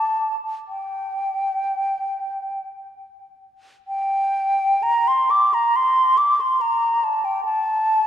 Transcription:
0.00 0.36 A5 medium
0.69 2.66 G5 medium
3.88 4.84 G5 medium
4.83 5.09 A#5 medium
5.08 5.32 C6 medium
5.30 5.55 D6 medium
5.54 5.77 A#5 medium
5.76 6.19 C6 medium
6.18 6.42 D6 medium
6.41 6.63 C6 medium
6.61 7.05 A#5 medium
7.04 7.26 A5 medium
7.25 7.44 G5 medium
7.45 8.07 A5 medium

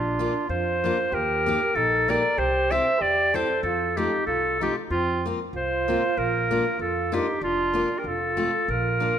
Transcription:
0.00 0.27 A#1 medium
0.00 0.44 D4 medium
0.00 0.46 F4 medium
0.19 0.32 A#3 medium
0.19 0.32 D4 soft
0.19 0.33 F4 medium
0.48 0.90 F2 medium
0.48 1.14 F4 medium
0.48 1.15 C5 medium
0.84 0.96 A#3 medium
0.84 0.97 D4 soft
0.84 0.97 F4 medium
1.12 1.53 D#2 medium
1.12 1.78 G4 medium
1.12 1.77 A#4 loud
1.46 1.59 A#3 medium
1.46 1.60 D#4 medium
1.46 1.60 G4 medium
1.75 2.16 A#1 medium
1.75 2.10 D#4 medium
1.75 2.11 A4 medium
2.08 2.22 A#3 medium
2.08 2.22 D#4 soft
2.08 2.22 G4 medium
2.08 2.40 A#4 medium
2.08 2.40 D5 medium
2.38 2.79 C2 medium
2.38 2.74 G4 medium
2.38 2.72 C5 medium
2.71 2.84 C4 medium
2.71 2.84 E4 medium
2.71 2.85 G4 medium
2.71 3.02 C5 medium
2.71 3.03 E5 medium
3.00 3.42 E2 medium
3.00 3.36 G4 medium
3.00 3.37 D5 medium
3.34 3.47 C4 medium
3.34 3.47 E4 soft
3.34 3.48 G4 medium
3.34 3.63 A4 medium
3.34 3.62 C5 medium
3.63 4.04 F2 medium
3.63 3.99 F4 medium
3.63 3.99 A4 medium
3.97 4.10 A3 medium
3.97 4.11 C4 medium
3.97 4.27 D#4 medium
3.97 4.11 F4 medium
3.97 4.26 G4 medium
4.26 4.68 C2 medium
4.26 4.59 F4 medium
4.26 4.59 A4 medium
4.60 4.74 A3 medium
4.60 4.75 C4 soft
4.60 4.74 D#4 medium
4.60 4.75 F4 medium
4.60 4.75 G4 medium
4.90 5.32 F2 medium
4.90 5.27 C4 medium
4.90 5.27 F4 medium
5.26 5.38 A#3 medium
5.26 5.38 C4 soft
5.26 5.39 F4 medium
5.53 5.94 C2 medium
5.53 6.17 F4 medium
5.53 6.19 C5 medium
5.88 6.01 A#3 medium
5.88 6.02 C4 medium
5.88 6.02 F4 medium
6.17 6.58 A#1 medium
6.17 6.79 F4 medium
6.17 6.80 A#4 medium
6.51 6.64 A#3 medium
6.51 6.64 D4 soft
6.51 6.64 F4 medium
6.79 7.20 F2 medium
6.79 7.15 F4 medium
6.79 7.16 A4 medium
7.12 7.25 A#3 medium
7.12 7.26 D4 medium
7.12 7.41 D#4 medium
7.12 7.26 F4 medium
7.12 7.42 G4 medium
7.41 7.82 F1 medium
7.41 8.00 D4 medium
7.41 8.00 F4 loud
7.74 7.87 A#3 medium
7.74 7.88 D4 soft
7.74 7.88 F4 medium
7.98 8.08 G4 soft
7.98 8.09 A#4 medium
8.04 8.45 F1 medium
8.04 8.70 F4 medium
8.04 8.71 A4 medium
8.37 8.51 A3 medium
8.37 8.51 C4 soft
8.37 8.51 F4 medium
8.68 9.09 A#1 medium
8.68 9.19 F4 medium
8.68 9.19 A#4 medium
9.00 9.14 A#3 medium
9.00 9.14 D4 soft
9.00 9.14 F4 medium

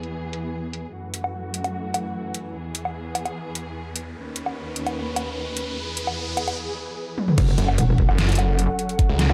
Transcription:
0.00 0.92 E2 medium
0.00 0.92 E3 medium
0.00 0.92 B3 medium
0.00 0.92 G#4 medium
0.00 closed hi-hat soft
0.33 closed hi-hat medium
0.73 closed hi-hat medium
0.94 2.53 F#2 medium
0.94 4.13 E3 medium
0.94 2.53 A3 medium
0.94 2.53 F#4 medium
0.94 riser medium
1.14 closed hi-hat medium
1.24 low woodblock medium
1.54 closed hi-hat medium
1.64 closed hi-hat soft
1.64 low woodblock medium
1.94 closed hi-hat medium
1.94 low woodblock medium
2.35 closed hi-hat medium
2.55 4.14 E2 medium
2.55 4.14 B3 medium
2.55 4.14 G#4 medium
2.75 closed hi-hat medium
2.85 low woodblock medium
3.15 closed hi-hat medium
3.15 low woodblock medium
3.26 closed hi-hat soft
3.26 low woodblock medium
3.55 closed hi-hat medium
3.96 closed hi-hat medium
4.16 5.75 D#2 medium
4.16 5.75 D#3 medium
4.16 5.75 C#4 medium
4.16 7.35 B4 medium
4.36 closed hi-hat medium
4.46 low woodblock soft
4.76 closed hi-hat medium
4.87 closed hi-hat soft
4.87 low woodblock medium
5.16 closed hi-hat medium
5.16 low woodblock medium
5.57 closed hi-hat medium
5.77 7.36 E2 medium
5.77 7.36 E3 medium
5.77 7.36 G#4 medium
5.97 closed hi-hat medium
6.07 low woodblock medium
6.37 closed hi-hat medium
6.37 low woodblock medium
6.48 closed hi-hat soft
6.48 low woodblock medium
7.18 high tom medium
7.28 mid tom medium
7.38 7.56 F#1 loud
7.38 9.33 F#3 medium
7.38 9.33 C#4 medium
7.38 9.33 A4 medium
7.38 9.33 F#5 medium
7.38 kick loud
7.38 closed hi-hat medium
7.38 crash loud
7.38 impact medium
7.58 7.77 F#1 loud
7.58 closed hi-hat medium
7.68 low woodblock medium
7.78 8.07 E1 loud
7.78 closed hi-hat medium
7.98 kick medium
8.09 8.67 F#1 loud
8.09 low woodblock medium
8.18 snare loud
8.18 closed hi-hat medium
8.29 closed hi-hat medium
8.32 closed hi-hat medium
8.35 closed hi-hat medium
8.39 closed hi-hat medium
8.39 low woodblock medium
8.59 closed hi-hat medium
8.79 closed hi-hat medium
8.89 closed hi-hat soft
8.99 kick loud
8.99 closed hi-hat medium
9.09 9.28 C#2 loud
9.19 snare medium
9.19 closed hi-hat medium
9.30 9.33 C#2 loud
9.30 low woodblock medium

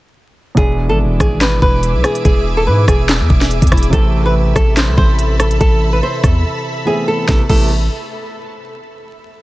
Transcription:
0.55 0.91 E1 loud
0.55 3.88 B2 medium
0.55 3.88 E3 medium
0.55 3.89 G#3 medium
0.55 3.90 D4 medium
0.55 3.90 G#4 medium
0.55 0.87 G#4 medium
0.55 3.90 E5 medium
0.55 3.90 D6 medium
0.55 kick loud
0.55 closed hi-hat loud
0.60 3.90 E4 medium
0.89 1.06 G#1 loud
0.89 0.98 A4 medium
1.05 1.19 E1 loud
1.20 1.60 G#1 loud
1.20 1.38 G#4 medium
1.20 kick medium
1.20 cross-stick medium
1.20 closed hi-hat medium
1.41 1.59 B4 medium
1.41 snare loud
1.41 clap loud
1.41 closed hi-hat medium
1.62 1.96 E1 loud
1.62 2.01 B4 medium
1.62 kick medium
1.83 closed hi-hat medium
1.94 2.04 B1 loud
2.04 2.22 G#4 loud
2.04 cross-stick loud
2.04 closed hi-hat loud
2.15 closed hi-hat soft
2.25 2.68 E1 loud
2.25 2.55 G#4 loud
2.25 kick loud
2.25 closed hi-hat medium
2.57 2.65 A4 medium
2.67 2.87 G#2 loud
2.67 2.85 B4 medium
2.88 3.22 E1 loud
2.88 3.68 G#4 medium
2.88 kick medium
2.88 cross-stick medium
2.88 closed hi-hat medium
3.09 snare loud
3.09 clap medium
3.09 closed hi-hat medium
3.20 3.29 E2 loud
3.30 3.61 E1 loud
3.30 kick medium
3.41 snare medium
3.51 closed hi-hat medium
3.62 3.72 E2 loud
3.62 kick medium
3.62 closed hi-hat medium
3.67 closed hi-hat medium
3.72 3.92 E1 loud
3.72 3.90 E4 medium
3.72 kick loud
3.72 cross-stick loud
3.72 closed hi-hat medium
3.77 closed hi-hat medium
3.83 closed hi-hat medium
3.90 4.53 A1 loud
3.90 6.81 C3 medium
3.90 6.82 E3 medium
3.90 6.82 A3 medium
3.90 6.83 C4 medium
3.90 4.23 A4 loud
3.90 7.25 A4 medium
3.90 7.25 E5 medium
3.90 7.25 B5 medium
3.90 kick loud
3.90 closed hi-hat loud
3.95 6.84 E4 medium
4.26 4.34 B4 medium
4.56 4.89 A1 loud
4.56 4.74 A4 medium
4.56 kick medium
4.56 cross-stick medium
4.56 closed hi-hat loud
4.77 4.95 C5 medium
4.77 snare loud
4.77 clap medium
4.77 closed hi-hat medium
4.88 4.97 C2 loud
4.97 5.58 A1 loud
4.97 5.37 C5 medium
4.97 kick medium
5.19 closed hi-hat medium
5.40 5.58 A4 medium
5.40 cross-stick loud
5.40 closed hi-hat loud
5.51 closed hi-hat medium
5.61 6.01 A1 loud
5.61 5.91 A4 loud
5.61 kick loud
5.61 closed hi-hat medium
5.93 6.01 B4 medium
6.03 6.21 C5 medium
6.23 6.44 E2 loud
6.23 6.83 A4 medium
6.23 kick medium
6.23 cross-stick medium
6.23 closed hi-hat medium
6.85 7.28 E3 soft
6.85 7.27 A3 soft
6.85 7.27 B3 medium
6.85 7.29 C4 soft
6.85 7.27 E4 medium
6.85 7.04 G#4 medium
7.08 7.26 A4 medium
7.29 7.41 A1 loud
7.29 7.41 C3 medium
7.29 7.41 A3 medium
7.29 7.41 B3 medium
7.29 7.41 E4 loud
7.29 7.41 A4 medium
7.29 kick loud
7.29 snare medium
7.50 7.89 A1 loud
7.50 7.69 C3 medium
7.50 7.69 A3 medium
7.50 7.69 B3 medium
7.50 7.69 E4 loud
7.50 7.69 A4 medium
7.50 kick loud
7.50 crash medium

